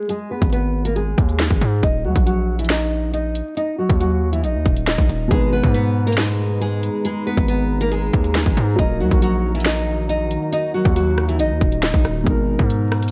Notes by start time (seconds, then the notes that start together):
0.09 G#3 G#4, closed hi-hat
0.31 B3 B4
0.42 G#1, kick, closed hi-hat
0.53 B3 B4, closed hi-hat
0.85 A#3 A#4, closed hi-hat
0.96 G#3 G#4, closed hi-hat
1.18 D#2, kick, closed hi-hat
1.29 closed hi-hat
1.40 G#3 G#4, snare
1.50 G#1, kick
1.61 G#2, closed hi-hat
1.83 D#1 D#4 D#5, kick, closed hi-hat
2.05 D#2 F#3 F#4
2.16 A#1, kick, closed hi-hat
2.26 F#3 F#4, closed hi-hat
2.59 E3 E4, closed hi-hat
2.65 closed hi-hat
2.70 D#4 D#5, snare, closed hi-hat
2.75 closed hi-hat
3.13 D#4 D#5, closed hi-hat
3.35 closed hi-hat
3.57 D#4 D#5, closed hi-hat
3.78 F#3 F#4
3.90 D#2, kick, closed hi-hat
4.00 F#3 F#4, closed hi-hat
4.33 E3 E4, closed hi-hat
4.44 A#1 D#4 D#5, closed hi-hat
4.55 D#2
4.66 D#1, kick, closed hi-hat
4.77 closed hi-hat
4.87 D#4 D#5, snare
4.98 A#1, kick
5.09 D#1, closed hi-hat
5.28 G#1 B2 G#3 D#4 G#4 B4 A#5, kick, closed hi-hat
5.32 D#4 B4
5.53 B3 B4
5.63 G#2, kick, closed hi-hat
5.74 B3 B4, closed hi-hat
6.07 A#3 A#4, closed hi-hat
6.12 closed hi-hat
6.17 G#3 G#4, snare, closed hi-hat
6.23 closed hi-hat
6.61 G#3 G#4, closed hi-hat
6.83 closed hi-hat
7.05 G#3 G#4, closed hi-hat
7.27 B3 B4
7.37 G#1, kick, closed hi-hat
7.48 B3 B4, closed hi-hat
7.81 A#3 A#4, closed hi-hat
7.92 G#3 G#4, closed hi-hat
8.13 D#2, kick, closed hi-hat
8.24 closed hi-hat
8.35 G#3 G#4, snare
8.46 G#1, kick
8.57 G#2, closed hi-hat
8.76 D#1 D#3 F#3 A#3 D#4 F#4 D#5, kick, closed hi-hat
8.80 D#4 A#4
9.00 D#2 F#3 F#4
9.11 A#1, kick, closed hi-hat
9.22 F#3 F#4, closed hi-hat
9.55 E3 E4, closed hi-hat
9.60 closed hi-hat
9.66 D#4 D#5, snare, closed hi-hat
9.71 closed hi-hat
10.09 D#4 D#5, closed hi-hat
10.31 closed hi-hat
10.53 D#4 D#5, closed hi-hat
10.74 F#3 F#4
10.85 D#2, kick, closed hi-hat
10.96 F#3 F#4, closed hi-hat
11.18 cross-stick
11.28 E3 E4, closed hi-hat
11.39 A#1 D#4 D#5, closed hi-hat
11.50 D#2
11.61 D#1, kick, closed hi-hat
11.72 closed hi-hat
11.83 D#4 D#5, snare
11.94 A#1, kick
12.05 D#1, cross-stick, closed hi-hat
12.23 G#1 B2 G#3 B3 A#4, kick, closed hi-hat
12.27 D#4 A#4
12.59 G#2, kick, closed hi-hat
12.70 closed hi-hat
12.92 cross-stick
13.03 closed hi-hat
13.08 closed hi-hat